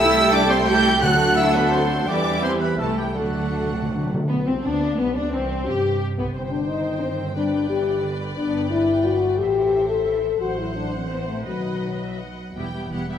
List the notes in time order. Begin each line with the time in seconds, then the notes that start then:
Already playing: A3
0.00 C2 G3 A3 E4 G4 A4 E5 G5 E6
0.32 D4 D5 D6
0.49 C4 C5 C6
0.67 G3 A3 E4 G4 A4 G5 G6
1.02 D2 D3 F#3 A3 D4 F#4 A4 F#5 F#6
1.35 E4 E5 E6
1.53 B3 B4 B5
1.70 C4 C5 C6
2.06 E2 E3 G3 B3 D4 E4 G4 D5 G5 D6
2.41 C4 C5 E5 C6
2.59 B3 B4 B5
2.77 C2 E3 A3 E4 A4 E5 A5
2.97 G3 G4 G5
3.14 D2 D3 F#3 A3 D4 F#4 A4 D5 F#5
3.25 D3
3.33 D3
3.41 D3
3.50 D3
3.55 D3 A3
3.66 D3
3.71 D3 C4
3.82 D3
3.89 D3 D4
3.97 D3
4.06 D3
4.10 D3 G3 A3
4.29 B1 B3
4.46 C2 C4
4.62 D2 B3 D4
4.98 B1 G3 B3
5.15 D2 D4
5.31 C2 E3 C4
5.66 G2 C3 G4
6.16 B1 B3
6.35 G1 C4 C5 G5
6.51 D4
6.68 D#3 D#4
7.01 C4
7.36 G3 D4 B4 D5
7.69 E3 G4
8.05 D3
8.37 G1 B3 D4 G5
8.71 G3 E4
9.04 F#4
9.38 A1 E3 G4 A4 C5 E5
9.89 A4
10.07 E3
10.40 A1 F#3 F#4 C5 F#5
10.58 E4
10.76 D4
10.94 C4
11.09 E3 B3 C5
11.27 A3
11.46 B1 D#3 F#3 B4 D#5 F#5
11.83 D#3
12.02 E3 E5
12.18 F#3 F#5
12.55 E1 E2 G3 B3 E4 G4 G5
12.74 G3 B3 E4 G4
12.90 E1 E2 G3 B3 E4 G4 F#5
13.09 G3 B3 E4 G4 E5